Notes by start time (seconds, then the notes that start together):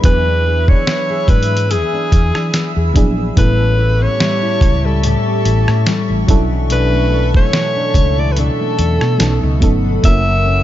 Already playing: F#3 B3 D4 E4 G#4 B4 E5 B5
0.02 E2 E3 F#3 B3 D4 E4 G#4 B4 E6, kick, closed hi-hat
0.27 D4
0.46 G#4
0.68 D4 C#5, kick
0.87 B3, snare
1.10 G#4
1.28 G#2 D4 B4, kick, closed hi-hat
1.43 closed hi-hat
1.51 B3
1.57 closed hi-hat
1.70 E3 G#4, closed hi-hat
1.93 D4
2.12 E2 G#4, kick, closed hi-hat
2.35 E3 D4, cross-stick
2.54 B3, snare, closed hi-hat
2.76 E2 G#4
2.94 A#1 F#3 B3 D4 E4 G#4, kick, closed hi-hat
3.18 B3
3.36 A1 A2 G3 B3 C#4 E4 G4 A4 B4 E5 A5 C#6, kick, closed hi-hat
3.59 C#4
3.78 E4
4.01 C#4 C#5
4.20 G3, snare
4.42 E4
4.61 C#2 C#4, kick, closed hi-hat
4.84 G3 A4
5.04 A2 E4 A4, closed hi-hat
5.26 C#4
5.45 A1 E4, closed hi-hat
5.68 A2 C#4, cross-stick
5.86 G3, snare, closed hi-hat
6.09 A1 E4
6.27 B1 B2 F#3 C#4 D4 E4 A4 E5 A5, kick, closed hi-hat
6.51 E3
6.70 B2 D4 B4, closed hi-hat
6.93 A3
7.12 D4
7.34 A3 C#5, kick
7.53 E3, snare
7.76 D4
7.94 C#2 A3, kick, closed hi-hat
8.18 E3 D5
8.32 B4
8.37 B2 D4 A4, closed hi-hat
8.60 A3
8.79 E2 D4, closed hi-hat
9.01 B2 A3, cross-stick
9.18 B1 B2 F#3 B3 C#4 D#4 A4 F#5 B5 D#6, snare, closed hi-hat
9.43 C#2 D#4
9.60 G1 F#3 A3 B3 C#4 D#4 A4, kick, closed hi-hat
9.84 F#3
10.02 F#1 F#2 F#3 A#3 C#4 E4 A#4 E5 C#6 E6, kick, closed hi-hat
10.27 A#3
10.46 C#4